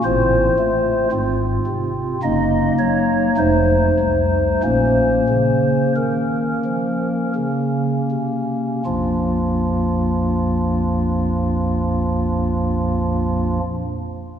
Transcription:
0.04 A1 A2 C4 F4 C5
0.59 A3
1.12 G#1 G#2 C4 F4
1.67 C3
2.23 F#1 F#2 A#3 D#4 D#5
2.79 F#3 C#5
3.37 F1 F2 A3 D#4 C5
4.00 C2
4.63 A#1 A#2 A#3 C#4 C5
5.29 C#3
5.96 D#3 A#4
6.65 F3
7.36 C#3
8.11 C3
8.85 A#1 F2 F3 A#3 D4 F4

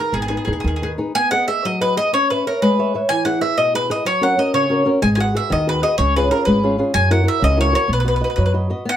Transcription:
Already playing: D#4 G#4 B4
0.00 A#4
0.12 G#1 B3 G#4
0.22 G#4
0.28 D#4 G#4 B4
0.37 G#4
0.45 D#2 D#4 G#4 B4
0.53 G#4
0.60 D#3 G#4
0.64 D#2 G#4
0.76 G#4
0.82 D#4 G#4 B4
0.98 D#4 G#4 B4
1.15 B3 G#5
1.31 G#4 B4 D#5 F#5
1.48 G#4 B4 D#5 E5
1.65 F#3 D#5
1.80 G#4 B4 D#5
1.97 G#4 B4 D#5
2.13 C#4 C#5
2.30 B4 C#5 E5
2.47 A#4 B4 C#5 E5
2.62 G#3 B4
2.79 B4 C#5 E5
2.94 B4 C#5 E5
3.09 E3 G#5
3.25 E4 G#4 B4 F#5
3.41 E4 G#4 B4 E5
3.57 B2 D#5
3.74 E4 G#4 B4
3.89 E4 G#4 B4 D#5
4.05 F#3 C#5
4.21 C#4 F#4 A#4 F#5
4.37 C#4 F#4 A#4 D#5
4.54 C#3 C#5
4.69 C#4 F#4 A#4
4.85 C#4 F#4 A#4
5.02 G#1 G#3 G#5
5.15 F#4 G#4 B4 G#5
5.20 F#5
5.35 F#4 G#4 B4 E5
5.50 D#2 D#3 D#5
5.67 F#4 G#4 B4
5.82 F#4 G#4 B4 D#5
5.98 C#2 C#3 C#5
6.16 C#4 F4 G#4 B4
6.31 C#4 F4 G#4 A#4
6.45 G#1 G#3 B4
6.63 C#4 F4 G#4
6.78 C#4 F4 G#4
6.94 F#2 F#3 G#5
7.11 E4 F#4 A#4 F#5
7.23 E4 F#4 A#4
7.28 E5
7.42 C#2 C#3 D#5
7.57 E4 F#4 A#4 C#5
7.73 E4 F#4 A#4 C#5
7.88 B1 B3
7.93 B4
8.00 B4
8.05 F#4 B4 D#5
8.16 B4
8.21 F#4 B4 D#5
8.30 B4
8.36 F#2 F#3 B4
8.46 B4
8.54 F#4 B4 D#5
8.70 F#4 B4 D#5
8.85 B3 F#5

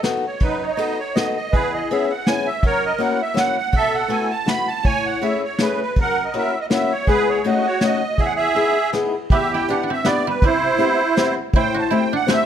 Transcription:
0.03 B3 D#4 F#4 A4, snare, ride
0.27 C#5
0.40 F#2 D#4 B4, kick, ride
0.62 C#5
0.67 C#5 D#5
0.76 B3 D#4 F#4 A4 D#5, ride
0.99 C#5
1.15 B3 D#4 F#4 A4 D#5, snare, ride
1.36 D#5
1.52 E2 G#4 B4, kick, ride
1.74 D#5
1.90 B3 C#4 E4 G#4 E5, ride
2.11 F#5
2.27 B3 C#4 E4 G#4 G#5, snare, ride
2.47 E5
2.63 F#2 A#4 C#5, kick, ride
2.86 D#5
2.98 A#3 C#4 E4 F#4 F#5, ride
3.22 E5
3.34 A#3 C#4 E4 F#4, snare, ride
3.38 F#5
3.58 F#5
3.72 B2 A4, kick, ride
3.77 E5
3.95 F#5
4.08 A3 B3 E4 F#4 G#5, ride
4.31 A5
4.46 A3 B3 E4 F#4 B5, snare, ride
4.67 A5
4.83 A2 C#5 G#5, kick, ride
5.06 F#5
5.21 A3 C#4 E4 G#4 E5, ride
5.44 C#5
5.59 A3 C#4 E4 G#4 B4, snare, ride
5.82 B4
5.96 F#2, kick, ride
6.01 A#4 F#5
6.25 D#5
6.33 A#3 C#4 E4 F#4, ride
6.38 E5
6.61 D#5
6.70 A#3 C#4 E4 F#4 E5, snare, ride
6.92 C#5
7.07 G#3 B3 E4 G#4 B4, kick, ride
7.29 C#5
7.44 A3 C#4 D#4 F#4 D#5, ride
7.67 C#5
7.81 A3 C#4 D#4 F#4 D#5, snare, ride
8.18 E2 G#4 E5, kick, ride
8.26 F#5
8.35 G#4 E5
8.55 B3 D#4 E4 G#4, ride
8.93 B3 D#4 E4 G#4, snare, ride
9.30 E2 B3 G4 E5, kick, closed hi-hat
9.53 E4 G5
9.68 B3 D4 E4 G4 F#5, closed hi-hat
9.83 D4 F#5
9.90 C4 E5
10.05 B3 D4 E4 G4 D5, snare, closed hi-hat
10.27 G3 B4
10.42 C3 G3 E4 C5, kick, closed hi-hat
10.78 B3 C4 E4 G4, closed hi-hat
11.17 B3 C4 E4 G4, snare, closed hi-hat
11.53 A2 E4 C5, kick, closed hi-hat
11.58 G5
11.74 F#4
11.78 A5
11.91 A3 C4 E4 G4, closed hi-hat
11.95 G5
12.13 D4 F#5
12.27 A3 C4 E4 G4, snare, closed hi-hat
12.33 E5

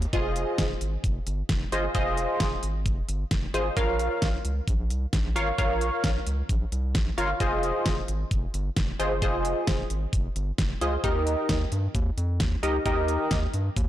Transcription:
0.02 closed hi-hat
0.13 F1 F4 G#4 C5 D#5, kick, closed hi-hat
0.36 closed hi-hat
0.58 F1, kick, snare, closed hi-hat
0.81 G#1, closed hi-hat
1.04 F1, kick, closed hi-hat
1.27 G1, closed hi-hat
1.49 F1, kick, snare, closed hi-hat
1.72 G1 F4 G#4 C5 D#5, closed hi-hat
1.95 F1 F4 G#4 C5 D#5, kick, closed hi-hat
2.17 closed hi-hat
2.40 F1, kick, snare, closed hi-hat
2.63 G#1, closed hi-hat
2.86 F1, kick, closed hi-hat
3.09 G1, closed hi-hat
3.31 F1, kick, snare, closed hi-hat
3.54 G#1 F4 G#4 C5 D#5, closed hi-hat
3.77 A#1 F4 A#4 C#5 F5, kick, closed hi-hat
3.99 closed hi-hat
4.22 A#1, kick, snare, closed hi-hat
4.45 C#2, closed hi-hat
4.68 A#1, kick, closed hi-hat
4.90 C2, closed hi-hat
5.13 A#1, kick, snare, closed hi-hat
5.36 G#1 F4 A#4 C#5 F5, closed hi-hat
5.58 A#1 F4 A#4 C#5 F5, kick, closed hi-hat
5.81 closed hi-hat
6.04 A#1, kick, snare, closed hi-hat
6.27 C#2, closed hi-hat
6.49 A#1, kick, closed hi-hat
6.72 C2, closed hi-hat
6.95 A#1, kick, snare, closed hi-hat
7.18 G1 F4 A#4 C#5 F5, closed hi-hat
7.40 F1 F4 G#4 C5 D#5, kick, closed hi-hat
7.63 closed hi-hat
7.86 F1, kick, snare, closed hi-hat
8.08 G#1, closed hi-hat
8.31 F1, kick, closed hi-hat
8.54 G1, closed hi-hat
8.77 F1, kick, snare, closed hi-hat
8.99 G1 F4 G#4 C5 D#5, closed hi-hat
9.22 F1 F4 G#4 C5 D#5, kick, closed hi-hat
9.45 closed hi-hat
9.67 F1, kick, snare, closed hi-hat
9.90 G#1, closed hi-hat
10.13 F1, kick, closed hi-hat
10.36 G1, closed hi-hat
10.58 F1, kick, snare, closed hi-hat
10.81 C#2 F4 G#4 C5 D#5, closed hi-hat
11.04 D#2 D#4 G4 A#4 D#5, kick, closed hi-hat
11.27 closed hi-hat
11.49 D#2, kick, snare, closed hi-hat
11.72 G2, closed hi-hat
11.95 D#2, kick, closed hi-hat
12.17 F2, closed hi-hat
12.40 D#2, kick, snare, closed hi-hat
12.63 C#2 D#4 G4 A#4 D#5, closed hi-hat
12.86 D#2 D#4 G4 A#4 D#5, kick, closed hi-hat
13.08 closed hi-hat
13.31 D#2, kick, snare, closed hi-hat
13.54 G2, closed hi-hat
13.77 D#2, kick, closed hi-hat

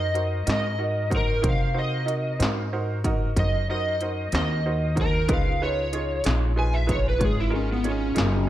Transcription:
Already playing: F#2 D#5
0.14 D#4 F#4 A#4 C5, closed hi-hat
0.47 G#2 D#4 F#4 A#4 D#5, snare, closed hi-hat
0.51 D#5
0.79 D#4 F#4 A#4 D#5
1.10 D#4 F#4 A#4 C5, kick, closed hi-hat
1.16 A#4
1.42 C3 D#4 F#4 A#4 C5, kick, closed hi-hat
1.49 F5
1.74 D#4 F#4 A#4 C5
1.79 D#5
2.06 D#4 F#4 A#4 D#5, closed hi-hat
2.39 G#2 D#4 F#4 A#4 C5, snare, closed hi-hat
2.73 D#4 F#4 A#4 C5
3.04 D#4 F#4 A#4 D#5, kick, closed hi-hat
3.36 F#2 D#4 F#4 A#4 C5 D#5, kick, closed hi-hat
3.70 D#4 F#4 A#4 C5 D#5
4.01 D#4 F#4 A#4 C5, closed hi-hat
4.32 D#2 D#4 F#4 A#4 C5 D#5, snare, closed hi-hat
4.66 D#4 F#4 A#4 C5
4.95 D#4 F#4 A#4 C5, kick, closed hi-hat
5.01 A#4
5.28 C#2 D#4 F4 G#4 B4, kick, closed hi-hat
5.33 F5
5.62 D#4 F4 G#4 B4 C#5
5.93 D#4 F4 G#4 C#5, closed hi-hat
6.24 A#1 D#4 F4 G#4 C#5, snare, closed hi-hat
6.56 D#4 F4 G#4 B4 G#5
6.74 E5
6.87 D#4 F4 G#4 B4, kick, closed hi-hat
6.91 C#5
7.09 B4
7.18 G#1 D#4 F4 G#4 C#5, kick, closed hi-hat
7.25 G#4
7.40 E4
7.50 D#4 F4 G#4 A#4
7.55 C#4
7.72 B3
7.84 D#4 F4 G#4 C#5, closed hi-hat
7.89 C#4
8.14 F#1 D#4 F4 G#4 A#4, snare, closed hi-hat

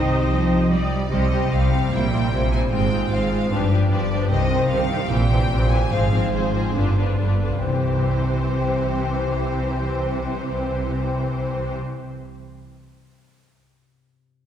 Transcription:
Already playing: C2 C3 D#3 C4 D#4 G4 C5 D#5
0.30 F3
0.71 G3 D5
1.11 C2 C3 G3 C4 G4 C5 D#5
1.31 G3 C4 G4 C5
1.52 C2 C3 G3 C4 G4 C5 F5
1.72 G3 C4 G4 C5
1.92 A#1 A#2 G3 C4 E4 C5 G5
2.12 G3 C4 E4 C5
2.32 A#1 A#2 G3 C4 E4 G4 C5
2.51 G3 C4 E4 C5 G#5
2.71 G#1 G#2 G#3 C4 F4 C5 G5
2.91 G#3 C4 F4 C5
3.11 G#1 G#2 G#3 C4 F4 C5 F5
3.32 G#3 C4 F4 C5
3.51 G1 G2 F3 D4 G4 B4
3.71 F3 D4 G4 B4
3.90 G1 G2 F3 D4 G4 B4 D5
4.11 F3 D4 G4 B4
4.31 C2 C3 D#3 C4 G4 C5 D#5
4.51 D#3 C4 G4 C5
4.69 C2 C3 D#3 C4 G4 C5 F5
4.90 D#3 C4 G4 C5
5.09 A#1 A#2 E3 C4 G4 C5 G5
5.29 E3 C4 G4 C5
5.50 A#1 A#2 E3 C4 G4 C5
5.70 E3 C4 G4 C5 G#5
5.90 G#1 G#2 F3 C4 G#4 C5 F5
6.11 F3 C4 G#4 C5
6.32 G#1 G#2 F3 C4 G#4 C5
6.53 F3 C4 G#4 C5
6.75 G1 G2 D3 D4 F4 B4
6.97 D3 B3 D4 F4 B4
7.18 G1 G2 D3 D4 F4 B4 D5
7.42 D3 B3 D4 F4 B4
7.64 C2 C3 E3 C4 G4 C5
7.72 C4
7.79 G4
7.86 E5
7.93 G5

